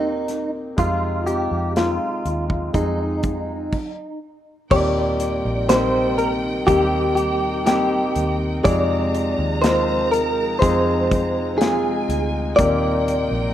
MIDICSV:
0, 0, Header, 1, 7, 480
1, 0, Start_track
1, 0, Key_signature, -3, "major"
1, 0, Tempo, 983607
1, 381, Time_signature, 4, 2, 24, 8
1, 6606, End_track
2, 0, Start_track
2, 0, Title_t, "Violin section"
2, 0, Program_c, 0, 48
2, 2293, Note_on_c, 0, 79, 111
2, 4197, Note_off_c, 0, 79, 0
2, 4221, Note_on_c, 0, 82, 111
2, 5660, Note_on_c, 0, 80, 105
2, 5661, Note_off_c, 0, 82, 0
2, 6121, Note_off_c, 0, 80, 0
2, 6132, Note_on_c, 0, 79, 112
2, 6606, Note_off_c, 0, 79, 0
2, 6606, End_track
3, 0, Start_track
3, 0, Title_t, "Clean electric guitar"
3, 0, Program_c, 1, 27
3, 0, Note_on_c, 1, 63, 69
3, 242, Note_off_c, 1, 63, 0
3, 386, Note_on_c, 1, 65, 78
3, 615, Note_off_c, 1, 65, 0
3, 617, Note_on_c, 1, 67, 82
3, 842, Note_off_c, 1, 67, 0
3, 864, Note_on_c, 1, 65, 69
3, 1323, Note_off_c, 1, 65, 0
3, 1341, Note_on_c, 1, 63, 65
3, 2041, Note_off_c, 1, 63, 0
3, 2300, Note_on_c, 1, 74, 107
3, 2761, Note_off_c, 1, 74, 0
3, 2778, Note_on_c, 1, 72, 104
3, 3014, Note_off_c, 1, 72, 0
3, 3016, Note_on_c, 1, 70, 93
3, 3081, Note_off_c, 1, 70, 0
3, 3254, Note_on_c, 1, 67, 108
3, 3480, Note_off_c, 1, 67, 0
3, 3490, Note_on_c, 1, 67, 94
3, 3734, Note_off_c, 1, 67, 0
3, 3740, Note_on_c, 1, 67, 90
3, 4081, Note_off_c, 1, 67, 0
3, 4219, Note_on_c, 1, 74, 106
3, 4691, Note_off_c, 1, 74, 0
3, 4693, Note_on_c, 1, 72, 90
3, 4934, Note_off_c, 1, 72, 0
3, 4936, Note_on_c, 1, 70, 92
3, 5166, Note_off_c, 1, 70, 0
3, 5168, Note_on_c, 1, 72, 99
3, 5635, Note_off_c, 1, 72, 0
3, 5650, Note_on_c, 1, 68, 98
3, 5995, Note_off_c, 1, 68, 0
3, 6129, Note_on_c, 1, 74, 105
3, 6606, Note_off_c, 1, 74, 0
3, 6606, End_track
4, 0, Start_track
4, 0, Title_t, "Grand piano"
4, 0, Program_c, 2, 0
4, 0, Control_c, 2, 64, 127
4, 0, Note_on_c, 2, 58, 60
4, 0, Note_on_c, 2, 60, 53
4, 0, Note_on_c, 2, 63, 49
4, 0, Note_on_c, 2, 67, 61
4, 354, Note_off_c, 2, 58, 0
4, 356, Note_off_c, 2, 60, 0
4, 358, Note_off_c, 2, 63, 0
4, 360, Note_off_c, 2, 67, 0
4, 374, Note_on_c, 2, 56, 71
4, 376, Note_on_c, 2, 48, 47
4, 378, Note_on_c, 2, 60, 63
4, 381, Note_on_c, 2, 63, 64
4, 381, Note_on_c, 2, 65, 83
4, 388, Control_c, 2, 64, 0
4, 480, Control_c, 2, 64, 127
4, 605, Note_off_c, 2, 56, 0
4, 607, Note_off_c, 2, 60, 0
4, 609, Note_off_c, 2, 63, 0
4, 609, Note_off_c, 2, 65, 0
4, 619, Note_on_c, 2, 56, 52
4, 623, Note_on_c, 2, 60, 45
4, 627, Note_on_c, 2, 63, 49
4, 630, Note_on_c, 2, 65, 59
4, 848, Note_off_c, 2, 56, 0
4, 850, Note_off_c, 2, 60, 0
4, 852, Note_off_c, 2, 63, 0
4, 853, Note_off_c, 2, 65, 0
4, 858, Note_on_c, 2, 56, 62
4, 861, Note_on_c, 2, 60, 50
4, 863, Note_on_c, 2, 63, 57
4, 866, Note_on_c, 2, 65, 68
4, 1079, Note_off_c, 2, 48, 0
4, 1315, Note_off_c, 2, 56, 0
4, 1317, Note_off_c, 2, 60, 0
4, 1318, Note_off_c, 2, 63, 0
4, 1319, Note_off_c, 2, 65, 0
4, 1334, Note_on_c, 2, 56, 66
4, 1338, Note_on_c, 2, 60, 55
4, 1342, Note_on_c, 2, 63, 56
4, 1345, Note_on_c, 2, 68, 71
4, 1793, Note_off_c, 2, 56, 0
4, 1795, Note_off_c, 2, 60, 0
4, 1797, Note_off_c, 2, 63, 0
4, 1799, Note_off_c, 2, 68, 0
4, 1827, Control_c, 2, 64, 0
4, 2296, Note_on_c, 2, 55, 68
4, 2298, Note_on_c, 2, 58, 64
4, 2300, Note_on_c, 2, 46, 59
4, 2302, Note_on_c, 2, 63, 58
4, 2303, Note_on_c, 2, 60, 58
4, 2307, Note_on_c, 2, 67, 70
4, 2406, Control_c, 2, 64, 127
4, 2754, Note_off_c, 2, 55, 0
4, 2755, Note_off_c, 2, 58, 0
4, 2757, Note_off_c, 2, 63, 0
4, 2758, Note_off_c, 2, 60, 0
4, 2760, Note_off_c, 2, 67, 0
4, 2776, Note_on_c, 2, 55, 77
4, 2782, Note_on_c, 2, 58, 67
4, 2782, Note_on_c, 2, 60, 70
4, 2784, Note_on_c, 2, 63, 68
4, 2786, Note_on_c, 2, 67, 81
4, 3001, Note_off_c, 2, 46, 0
4, 3234, Note_off_c, 2, 55, 0
4, 3237, Note_off_c, 2, 58, 0
4, 3237, Note_off_c, 2, 60, 0
4, 3239, Note_off_c, 2, 63, 0
4, 3239, Note_off_c, 2, 67, 0
4, 3256, Note_on_c, 2, 55, 78
4, 3259, Note_on_c, 2, 58, 75
4, 3260, Note_on_c, 2, 60, 72
4, 3266, Note_on_c, 2, 63, 70
4, 3267, Note_on_c, 2, 67, 88
4, 3714, Note_off_c, 2, 55, 0
4, 3716, Note_off_c, 2, 58, 0
4, 3716, Note_off_c, 2, 60, 0
4, 3719, Note_off_c, 2, 63, 0
4, 3720, Note_off_c, 2, 67, 0
4, 3735, Note_on_c, 2, 55, 73
4, 3738, Note_on_c, 2, 58, 64
4, 3740, Note_on_c, 2, 60, 73
4, 3742, Note_on_c, 2, 63, 69
4, 3745, Note_on_c, 2, 67, 79
4, 4194, Note_off_c, 2, 55, 0
4, 4195, Note_off_c, 2, 58, 0
4, 4196, Note_off_c, 2, 60, 0
4, 4197, Note_off_c, 2, 63, 0
4, 4199, Note_off_c, 2, 67, 0
4, 4212, Note_on_c, 2, 56, 72
4, 4215, Note_on_c, 2, 60, 59
4, 4217, Note_on_c, 2, 48, 58
4, 4217, Note_on_c, 2, 63, 69
4, 4218, Note_on_c, 2, 65, 60
4, 4222, Note_on_c, 2, 68, 84
4, 4227, Control_c, 2, 64, 0
4, 4320, Control_c, 2, 64, 127
4, 4672, Note_off_c, 2, 56, 0
4, 4673, Note_off_c, 2, 60, 0
4, 4675, Note_off_c, 2, 63, 0
4, 4675, Note_off_c, 2, 65, 0
4, 4677, Note_off_c, 2, 68, 0
4, 4697, Note_on_c, 2, 56, 77
4, 4699, Note_on_c, 2, 60, 70
4, 4700, Note_on_c, 2, 63, 67
4, 4703, Note_on_c, 2, 65, 66
4, 4706, Note_on_c, 2, 70, 78
4, 4919, Note_off_c, 2, 48, 0
4, 5155, Note_off_c, 2, 56, 0
4, 5156, Note_off_c, 2, 60, 0
4, 5156, Note_off_c, 2, 63, 0
4, 5158, Note_off_c, 2, 65, 0
4, 5159, Note_off_c, 2, 70, 0
4, 5175, Note_on_c, 2, 56, 85
4, 5177, Note_on_c, 2, 60, 73
4, 5179, Note_on_c, 2, 63, 77
4, 5183, Note_on_c, 2, 65, 70
4, 5183, Note_on_c, 2, 68, 91
4, 5634, Note_off_c, 2, 56, 0
4, 5635, Note_off_c, 2, 60, 0
4, 5636, Note_off_c, 2, 63, 0
4, 5638, Note_off_c, 2, 65, 0
4, 5638, Note_off_c, 2, 68, 0
4, 5656, Note_on_c, 2, 56, 76
4, 5661, Note_on_c, 2, 60, 62
4, 5661, Note_on_c, 2, 63, 68
4, 5665, Note_on_c, 2, 65, 72
4, 5667, Note_on_c, 2, 68, 75
4, 6114, Note_off_c, 2, 56, 0
4, 6117, Note_off_c, 2, 60, 0
4, 6117, Note_off_c, 2, 63, 0
4, 6119, Note_off_c, 2, 65, 0
4, 6120, Note_off_c, 2, 68, 0
4, 6136, Note_on_c, 2, 58, 69
4, 6138, Note_on_c, 2, 60, 68
4, 6142, Note_on_c, 2, 46, 68
4, 6142, Note_on_c, 2, 63, 57
4, 6144, Note_on_c, 2, 67, 60
4, 6147, Control_c, 2, 64, 0
4, 6147, Note_on_c, 2, 70, 77
4, 6223, Control_c, 2, 64, 127
4, 6594, Note_off_c, 2, 58, 0
4, 6595, Note_off_c, 2, 60, 0
4, 6597, Note_off_c, 2, 63, 0
4, 6598, Note_off_c, 2, 67, 0
4, 6599, Note_off_c, 2, 70, 0
4, 6606, Note_off_c, 2, 46, 0
4, 6606, End_track
5, 0, Start_track
5, 0, Title_t, "String section"
5, 0, Program_c, 3, 48
5, 2297, Note_on_c, 3, 63, 75
5, 2299, Note_on_c, 3, 48, 64
5, 2299, Note_on_c, 3, 51, 62
5, 2299, Note_on_c, 3, 55, 67
5, 2300, Note_on_c, 3, 58, 65
5, 4201, Note_off_c, 3, 51, 0
5, 4201, Note_off_c, 3, 55, 0
5, 4201, Note_off_c, 3, 58, 0
5, 4221, Note_on_c, 3, 53, 64
5, 4221, Note_on_c, 3, 56, 72
5, 6119, Note_off_c, 3, 63, 0
5, 6120, Note_off_c, 3, 48, 0
5, 6122, Note_off_c, 3, 53, 0
5, 6122, Note_off_c, 3, 56, 0
5, 6131, Note_on_c, 3, 63, 87
5, 6133, Note_on_c, 3, 55, 63
5, 6134, Note_on_c, 3, 48, 72
5, 6134, Note_on_c, 3, 58, 76
5, 6606, Note_off_c, 3, 48, 0
5, 6606, Note_off_c, 3, 55, 0
5, 6606, Note_off_c, 3, 58, 0
5, 6606, Note_off_c, 3, 63, 0
5, 6606, End_track
6, 0, Start_track
6, 0, Title_t, "Fingered electric bass"
6, 0, Program_c, 4, 33
6, 0, Note_on_c, 4, 39, 85
6, 361, Note_off_c, 4, 39, 0
6, 380, Note_on_c, 4, 41, 84
6, 721, Note_off_c, 4, 41, 0
6, 739, Note_on_c, 4, 41, 69
6, 963, Note_off_c, 4, 41, 0
6, 1100, Note_on_c, 4, 39, 72
6, 1323, Note_off_c, 4, 39, 0
6, 1339, Note_on_c, 4, 41, 80
6, 1800, Note_off_c, 4, 41, 0
6, 2299, Note_on_c, 4, 39, 100
6, 2640, Note_off_c, 4, 39, 0
6, 2659, Note_on_c, 4, 34, 88
6, 3240, Note_off_c, 4, 34, 0
6, 3258, Note_on_c, 4, 39, 103
6, 3960, Note_off_c, 4, 39, 0
6, 3983, Note_on_c, 4, 39, 88
6, 4205, Note_off_c, 4, 39, 0
6, 4221, Note_on_c, 4, 41, 113
6, 4561, Note_off_c, 4, 41, 0
6, 4581, Note_on_c, 4, 39, 94
6, 5161, Note_off_c, 4, 39, 0
6, 5183, Note_on_c, 4, 41, 115
6, 5882, Note_off_c, 4, 41, 0
6, 5901, Note_on_c, 4, 38, 86
6, 6124, Note_off_c, 4, 38, 0
6, 6141, Note_on_c, 4, 39, 107
6, 6481, Note_off_c, 4, 39, 0
6, 6498, Note_on_c, 4, 34, 98
6, 6606, Note_off_c, 4, 34, 0
6, 6606, End_track
7, 0, Start_track
7, 0, Title_t, "Drums"
7, 138, Note_on_c, 9, 42, 66
7, 144, Note_on_c, 9, 38, 27
7, 187, Note_off_c, 9, 42, 0
7, 193, Note_off_c, 9, 38, 0
7, 380, Note_on_c, 9, 36, 81
7, 380, Note_on_c, 9, 42, 67
7, 428, Note_off_c, 9, 42, 0
7, 429, Note_off_c, 9, 36, 0
7, 620, Note_on_c, 9, 42, 68
7, 669, Note_off_c, 9, 42, 0
7, 860, Note_on_c, 9, 42, 75
7, 863, Note_on_c, 9, 38, 96
7, 908, Note_off_c, 9, 42, 0
7, 912, Note_off_c, 9, 38, 0
7, 1101, Note_on_c, 9, 42, 60
7, 1150, Note_off_c, 9, 42, 0
7, 1219, Note_on_c, 9, 36, 69
7, 1268, Note_off_c, 9, 36, 0
7, 1338, Note_on_c, 9, 36, 78
7, 1339, Note_on_c, 9, 42, 61
7, 1387, Note_off_c, 9, 36, 0
7, 1387, Note_off_c, 9, 42, 0
7, 1576, Note_on_c, 9, 42, 62
7, 1579, Note_on_c, 9, 36, 82
7, 1625, Note_off_c, 9, 42, 0
7, 1628, Note_off_c, 9, 36, 0
7, 1817, Note_on_c, 9, 49, 63
7, 1818, Note_on_c, 9, 36, 75
7, 1866, Note_off_c, 9, 49, 0
7, 1867, Note_off_c, 9, 36, 0
7, 2298, Note_on_c, 9, 49, 95
7, 2299, Note_on_c, 9, 36, 100
7, 2347, Note_off_c, 9, 36, 0
7, 2347, Note_off_c, 9, 49, 0
7, 2537, Note_on_c, 9, 42, 86
7, 2586, Note_off_c, 9, 42, 0
7, 2778, Note_on_c, 9, 42, 110
7, 2781, Note_on_c, 9, 38, 127
7, 2827, Note_off_c, 9, 42, 0
7, 2830, Note_off_c, 9, 38, 0
7, 3019, Note_on_c, 9, 42, 75
7, 3068, Note_off_c, 9, 42, 0
7, 3259, Note_on_c, 9, 36, 93
7, 3261, Note_on_c, 9, 42, 78
7, 3308, Note_off_c, 9, 36, 0
7, 3310, Note_off_c, 9, 42, 0
7, 3499, Note_on_c, 9, 42, 69
7, 3548, Note_off_c, 9, 42, 0
7, 3741, Note_on_c, 9, 42, 100
7, 3744, Note_on_c, 9, 38, 96
7, 3790, Note_off_c, 9, 42, 0
7, 3793, Note_off_c, 9, 38, 0
7, 3980, Note_on_c, 9, 42, 85
7, 4029, Note_off_c, 9, 42, 0
7, 4222, Note_on_c, 9, 36, 106
7, 4223, Note_on_c, 9, 42, 85
7, 4270, Note_off_c, 9, 36, 0
7, 4271, Note_off_c, 9, 42, 0
7, 4463, Note_on_c, 9, 42, 77
7, 4512, Note_off_c, 9, 42, 0
7, 4703, Note_on_c, 9, 42, 100
7, 4706, Note_on_c, 9, 38, 123
7, 4751, Note_off_c, 9, 42, 0
7, 4755, Note_off_c, 9, 38, 0
7, 4945, Note_on_c, 9, 42, 76
7, 4994, Note_off_c, 9, 42, 0
7, 5183, Note_on_c, 9, 36, 101
7, 5188, Note_on_c, 9, 42, 76
7, 5232, Note_off_c, 9, 36, 0
7, 5237, Note_off_c, 9, 42, 0
7, 5424, Note_on_c, 9, 36, 92
7, 5425, Note_on_c, 9, 42, 77
7, 5473, Note_off_c, 9, 36, 0
7, 5474, Note_off_c, 9, 42, 0
7, 5665, Note_on_c, 9, 42, 93
7, 5668, Note_on_c, 9, 38, 101
7, 5714, Note_off_c, 9, 42, 0
7, 5717, Note_off_c, 9, 38, 0
7, 5903, Note_on_c, 9, 42, 86
7, 5952, Note_off_c, 9, 42, 0
7, 6142, Note_on_c, 9, 36, 101
7, 6143, Note_on_c, 9, 42, 89
7, 6191, Note_off_c, 9, 36, 0
7, 6192, Note_off_c, 9, 42, 0
7, 6383, Note_on_c, 9, 42, 82
7, 6432, Note_off_c, 9, 42, 0
7, 6606, End_track
0, 0, End_of_file